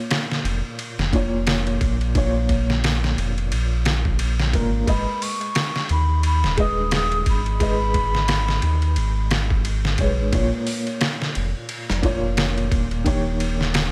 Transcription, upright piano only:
Already playing: A#2 A#3 F4 C#5
1.12 A#2 A#3 F4 C#5
2.15 A#2 A#3 F4 C#5
4.53 A#2 A#3 F4 A#4
4.86 G#3 G#4 B4 D#5
6.57 G#3 G#4 B4 D#5
7.59 G#3 G#4 B4 D#5
9.99 G#3 G#4 B4 C#5
10.32 A#2 A#3 F4 C#5
12.02 A#2 A#3 F4 C#5
13.04 D#3 A#3 G4 C#5

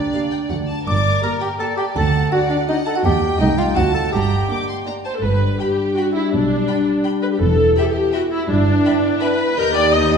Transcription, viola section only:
0.14 A#3 G4
0.51 A3 F#4
1.24 A#3 G4
1.61 A#3 G4
2.33 D4 F#4
2.69 D4 F#4
3.05 A#3 D#4
3.41 A3 D#4
3.77 C4 D#4
4.50 A#3 D4
4.87 A#3 D4
5.05 C5
5.14 A4
5.23 B4
5.60 G4
5.96 F#4
6.15 E4
6.32 D4
7.22 B4
7.33 G4
7.41 A4
7.77 G4
7.85 A4
7.92 G4
8.14 F#4
8.31 E4
8.49 D4
9.21 B4
9.58 A#4
9.75 D5
9.93 D#5

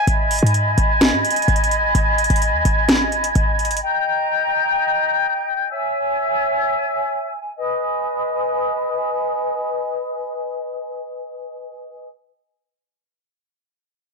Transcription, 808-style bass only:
0.07 G#1
0.43 G#2
0.78 G#1
1.13 G#2
1.48 G#1
1.95 G#1
2.30 G#1
2.54 D#2
2.65 G#1
3.36 G#1
3.71 G1

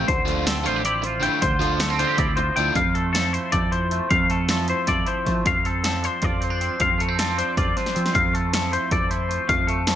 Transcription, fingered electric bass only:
0.08 D2
0.67 A1
1.43 D2
2.18 D2
2.57 D2
2.75 F2
3.53 F2
4.11 F2
4.88 F2
5.27 F3
5.46 F2
6.23 F2
6.80 F2
7.58 F2
7.96 F3
8.15 F2
8.92 F2
9.49 F2

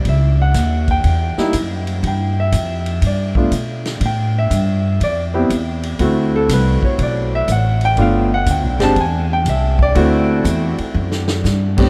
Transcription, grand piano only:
0.09 E5
0.42 F#5
0.91 G5
1.38 G3 A#3 D#4 E4
2.07 G5
2.40 E5
3.07 D5
3.37 A3 B3 D4 F4
4.06 G5
4.38 E5
5.04 D5
5.34 B3 C4 E4 G4
6.00 A3 C4 E4 F#4
6.36 A4
6.53 B4
6.85 C#5
7.03 D5
7.35 E5
7.52 F#5
7.85 G5
7.98 A3 B3 D4 F4 F5
8.34 F#5
8.51 G5
8.80 G#3 C4 D4 G4 A5
9.01 G#5
9.33 G5
9.49 E5
9.82 D5
9.95 A3 C4 E4 F#4
11.77 A2 B3 C4 D4 G4

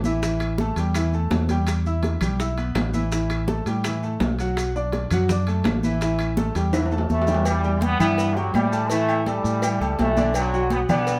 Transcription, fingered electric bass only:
Already playing: A1
0.76 E2
1.31 E2
2.21 B1
2.75 A1
3.66 A2
4.20 B1
5.11 F#2
5.65 A1
6.55 E2
7.10 E2
7.99 G2
8.54 A2
9.44 A2
9.80 C#2
9.99 B1
10.89 B2

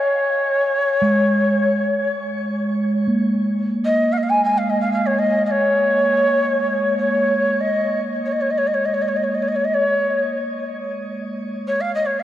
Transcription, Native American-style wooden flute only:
Already playing: C#5
3.85 D#5
4.12 F5
4.18 D#5
4.23 F5
4.30 G#5
4.44 G#5
4.58 F5
4.70 D#5
4.81 F5
4.93 F5
5.06 C#5
5.19 D#5
5.46 D#5
5.51 C#5
6.98 C#5
7.61 D#5
8.26 C#5
8.32 D#5
8.41 C#5
8.51 D#5
8.58 C#5
8.67 D#5
8.74 C#5
8.85 D#5
8.94 C#5
9.02 D#5
9.08 C#5
9.16 D#5
9.23 C#5
9.34 D#5
9.42 C#5
9.48 D#5
9.55 C#5
9.64 D#5
9.74 C#5
11.67 C#5
11.81 F5
11.95 D#5
12.06 C#5
12.20 F5

